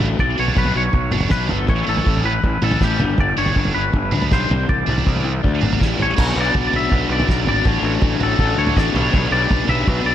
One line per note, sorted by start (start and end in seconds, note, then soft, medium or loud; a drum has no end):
0.00 0.16 A1 medium
0.00 0.18 D3 medium
0.00 0.18 F#3 medium
0.00 0.19 A3 medium
0.00 floor tom medium
0.18 0.36 B1 medium
0.18 0.36 B2 medium
0.18 0.37 F#3 medium
0.18 0.37 B3 medium
0.18 0.37 D5 medium
0.18 kick loud
0.18 floor tom medium
0.37 0.55 B1 medium
0.37 0.54 B2 medium
0.37 0.55 B2 medium
0.37 0.54 F#3 medium
0.37 0.56 F#3 medium
0.37 0.56 B3 medium
0.37 0.57 D4 loud
0.37 0.58 C#5 medium
0.48 floor tom medium
0.55 0.73 B1 medium
0.55 0.73 B2 medium
0.55 0.81 B2 medium
0.55 0.73 F#3 medium
0.55 0.81 F#3 medium
0.55 0.81 B3 medium
0.55 0.81 D4 medium
0.55 0.75 B4 medium
0.55 kick loud
0.65 floor tom medium
0.75 0.92 B1 medium
0.75 0.92 B2 medium
0.75 0.92 F#3 medium
0.75 1.31 C#5 medium
0.93 1.10 B1 medium
0.93 1.11 B2 medium
0.93 1.10 F#3 medium
0.93 kick medium
0.93 floor tom medium
1.11 1.29 F#1 medium
1.11 1.29 B2 medium
1.11 1.30 B2 medium
1.11 1.30 F#3 medium
1.11 1.31 B3 medium
1.11 1.31 D4 medium
1.11 mid tom medium
1.20 floor tom medium
1.29 1.47 B1 medium
1.29 1.48 B2 medium
1.29 1.56 B2 medium
1.29 1.48 F#3 medium
1.29 1.56 F#3 medium
1.29 1.49 B3 medium
1.29 1.56 B3 medium
1.29 1.56 D4 medium
1.29 1.50 B4 medium
1.29 kick loud
1.29 snare medium
1.29 mid tom medium
1.49 1.67 G1 medium
1.49 1.66 B2 medium
1.49 1.67 F#3 medium
1.49 1.67 B3 medium
1.49 1.69 A4 medium
1.49 floor tom medium
1.67 1.85 A1 medium
1.67 1.85 A2 medium
1.67 1.85 E3 loud
1.67 1.86 A3 loud
1.67 1.88 C#5 medium
1.67 kick loud
1.67 floor tom medium
1.86 2.04 A1 medium
1.86 2.03 A2 medium
1.86 2.04 E3 medium
1.86 2.05 E3 medium
1.86 2.06 A3 medium
1.86 2.06 C#4 medium
1.86 2.06 E4 loud
1.86 2.23 A4 medium
1.97 floor tom medium
2.04 2.39 A1 medium
2.04 2.22 A2 medium
2.04 2.22 E3 medium
2.04 2.31 E3 medium
2.04 2.31 A3 medium
2.04 2.31 C#4 medium
2.04 2.31 E4 medium
2.04 kick loud
2.17 floor tom medium
2.24 2.42 A2 medium
2.24 2.41 E3 medium
2.24 2.63 B4 medium
2.43 2.60 A1 medium
2.43 2.60 A2 medium
2.43 2.61 E3 medium
2.43 kick medium
2.43 floor tom medium
2.62 2.79 A1 medium
2.62 2.79 A2 medium
2.62 2.80 E3 medium
2.62 2.80 A3 medium
2.62 2.80 C#4 medium
2.62 2.80 E4 medium
2.62 2.82 A4 medium
2.62 mid tom medium
2.71 floor tom medium
2.81 3.01 A1 medium
2.81 2.99 A2 medium
2.81 3.00 E3 medium
2.81 2.99 E3 medium
2.81 3.00 A3 medium
2.81 2.99 A3 loud
2.81 3.00 C#4 medium
2.81 3.00 E4 medium
2.81 3.09 G4 medium
2.81 kick medium
2.81 snare medium
2.81 mid tom medium
3.00 3.16 G1 medium
3.00 3.17 G2 medium
3.00 3.17 D3 medium
3.00 3.18 G3 loud
3.00 floor tom medium
3.18 3.35 G1 medium
3.18 3.35 G2 medium
3.18 3.35 D3 medium
3.18 3.38 D5 medium
3.18 kick medium
3.18 floor tom medium
3.37 3.54 G1 medium
3.37 3.54 G2 medium
3.37 3.55 D3 medium
3.37 3.54 D3 medium
3.37 3.54 G3 medium
3.37 3.55 B3 medium
3.37 3.55 D4 loud
3.37 3.74 C#5 medium
3.46 floor tom medium
3.55 3.73 G1 medium
3.55 3.73 G2 medium
3.55 3.80 D3 medium
3.55 3.73 D3 medium
3.55 3.80 G3 medium
3.55 3.80 B3 medium
3.55 3.80 D4 medium
3.55 kick loud
3.65 floor tom medium
3.74 3.92 G1 medium
3.74 3.92 G2 medium
3.74 3.92 D3 medium
3.74 4.27 B4 medium
3.93 4.10 G1 medium
3.93 4.11 G2 medium
3.93 4.11 D3 medium
3.93 kick medium
3.93 floor tom medium
4.12 4.28 D2 medium
4.12 4.30 G2 medium
4.12 4.29 D3 medium
4.12 4.30 D3 medium
4.12 4.30 G3 medium
4.12 4.30 B3 medium
4.12 4.30 D4 medium
4.12 mid tom medium
4.22 floor tom medium
4.31 4.48 B1 medium
4.31 4.49 G2 medium
4.31 4.49 D3 medium
4.31 4.49 G3 medium
4.31 4.50 B3 medium
4.31 4.50 D4 medium
4.31 4.69 C5 medium
4.31 kick loud
4.31 snare medium
4.31 mid tom medium
4.50 4.66 C2 medium
4.50 4.68 C3 medium
4.50 4.68 E3 medium
4.50 4.68 G3 loud
4.50 floor tom medium
4.69 4.85 C2 medium
4.69 4.86 C3 medium
4.69 4.86 E3 medium
4.69 5.76 D5 medium
4.69 kick loud
4.69 floor tom medium
4.87 5.03 C2 medium
4.87 5.04 C3 medium
4.87 5.04 E3 medium
4.87 5.05 G3 medium
4.87 5.05 C4 medium
4.87 5.05 E4 loud
4.87 mid tom medium
4.98 floor tom medium
5.05 5.39 C2 medium
5.05 5.30 C3 medium
5.05 5.22 C3 medium
5.05 5.22 E3 medium
5.05 5.30 G3 medium
5.05 5.30 C4 medium
5.05 5.30 E4 medium
5.05 kick loud
5.16 floor tom medium
5.24 5.41 C3 medium
5.24 5.41 E3 medium
5.43 5.60 D2 medium
5.43 5.61 D3 medium
5.43 5.61 A3 loud
5.43 5.60 D4 medium
5.43 kick medium
5.43 floor tom medium
5.61 5.78 G#1 medium
5.61 5.78 D3 medium
5.61 5.80 D3 medium
5.61 5.79 A3 medium
5.61 5.78 A3 medium
5.61 5.80 D4 medium
5.61 5.80 F#4 medium
5.61 mid tom medium
5.73 floor tom medium
5.79 5.97 A1 medium
5.79 5.97 A2 medium
5.79 5.97 E3 medium
5.79 6.04 E3 medium
5.79 5.97 G3 medium
5.79 6.04 A3 medium
5.79 6.04 C#4 medium
5.79 6.05 E4 medium
5.79 kick medium
5.79 snare medium
5.98 6.15 A1 medium
5.98 6.16 A2 medium
5.98 6.16 E3 medium
5.98 6.16 G3 loud
5.98 floor tom medium
6.02 6.39 C#5 medium
6.16 6.33 B1 medium
6.16 6.71 B2 medium
6.16 6.74 F#3 medium
6.16 6.89 B3 medium
6.16 6.72 B3 medium
6.16 6.72 D4 medium
6.16 6.90 D4 medium
6.16 6.90 F#4 medium
6.16 6.72 F#4 medium
6.16 6.91 B4 medium
6.16 kick loud
6.16 floor tom medium
6.16 crash loud
6.36 6.51 B1 medium
6.41 6.66 D5 medium
6.54 6.70 B1 medium
6.54 kick loud
6.54 floor tom medium
6.67 6.74 D5 medium
6.72 6.88 B1 medium
6.72 7.25 B2 medium
6.72 7.27 F#3 medium
6.72 7.27 B3 medium
6.72 7.29 D4 medium
6.72 7.29 F#4 medium
6.72 floor tom medium
6.76 7.12 E5 medium
6.90 7.07 B1 medium
6.90 7.64 B3 medium
6.90 7.65 D4 medium
6.90 7.66 F#4 medium
6.90 7.65 B4 medium
6.90 kick medium
6.90 floor tom medium
7.09 7.25 B1 medium
7.09 7.47 D5 medium
7.20 floor tom medium
7.26 7.44 B1 medium
7.26 7.64 B2 medium
7.26 7.65 F#3 medium
7.26 7.64 B3 medium
7.26 7.66 D4 medium
7.26 7.66 F#4 medium
7.26 kick loud
7.26 snare medium
7.45 7.61 G#1 medium
7.45 7.68 D5 medium
7.45 floor tom medium
7.64 7.81 A1 loud
7.64 8.37 A2 medium
7.64 8.20 A2 medium
7.64 8.20 D3 medium
7.64 8.36 D3 medium
7.64 8.20 A3 medium
7.64 8.38 D4 medium
7.64 8.20 D4 medium
7.64 8.39 F#4 medium
7.64 8.19 F#4 medium
7.64 8.38 A4 medium
7.64 8.24 C#5 medium
7.64 kick loud
7.64 floor tom medium
7.82 7.98 A1 medium
8.01 8.17 A1 medium
8.01 kick loud
8.01 floor tom medium
8.19 8.35 A1 medium
8.19 8.75 A2 medium
8.19 8.75 D3 medium
8.19 8.76 A3 medium
8.19 8.77 D4 medium
8.19 8.77 F#4 medium
8.19 floor tom medium
8.23 8.57 A4 medium
8.38 8.54 A1 medium
8.38 8.93 A2 medium
8.38 8.93 D3 medium
8.38 8.94 D4 medium
8.38 8.95 F#4 medium
8.38 8.94 A4 medium
8.38 kick medium
8.38 floor tom medium
8.56 8.73 D2 medium
8.56 8.77 C#5 medium
8.67 floor tom medium
8.76 8.92 A1 medium
8.76 8.94 A2 medium
8.76 8.94 D3 medium
8.76 8.94 A3 medium
8.76 8.95 D4 medium
8.76 8.96 F#4 medium
8.76 8.96 D5 medium
8.76 kick loud
8.76 snare medium
8.94 9.10 B1 medium
8.94 9.49 B2 medium
8.94 9.50 G3 medium
8.94 9.68 B3 loud
8.94 9.50 B3 medium
8.94 9.67 D4 medium
8.94 9.50 D4 loud
8.94 9.66 G4 medium
8.94 9.66 B4 medium
8.94 9.32 C#5 loud
8.94 floor tom medium
9.14 9.29 B1 medium
9.14 kick loud
9.14 floor tom medium
9.31 9.47 B1 medium
9.31 9.67 D5 loud
9.50 9.66 B1 medium
9.50 9.85 B2 medium
9.50 9.87 G3 medium
9.50 9.87 B3 medium
9.50 9.88 D4 medium
9.50 kick loud
9.50 floor tom loud
9.67 9.84 B1 medium
9.67 9.87 B3 medium
9.67 9.86 D4 medium
9.67 9.86 G4 medium
9.67 9.86 B4 medium
9.67 10.06 E5 medium
9.67 floor tom medium
9.87 10.03 B1 medium
9.87 10.15 B2 medium
9.87 10.15 F#3 loud
9.87 10.15 F#3 medium
9.87 10.15 B3 medium
9.87 10.15 B3 loud
9.87 10.15 D4 loud
9.87 10.15 F#4 loud
9.87 10.15 B4 medium
9.87 kick medium
9.87 floor tom medium
10.04 10.15 B1 medium
10.04 10.15 D5 loud